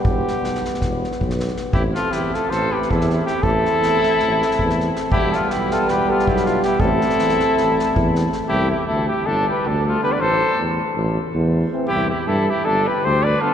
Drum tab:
SD |--o-ooooo-oo-oooo-|--o-o-o-o--o-oo-o-|--o-o-o-o-oo-oo-o-|--o-o-o-o--o-oo-o-|
BD |o-------o---o-----|o-----------o-----|o-----------o-----|o-----------o-----|

SD |--ooooo-o-o---o-o-|------------------|------------------|------------------|
BD |o-----------o-----|------------------|------------------|------------------|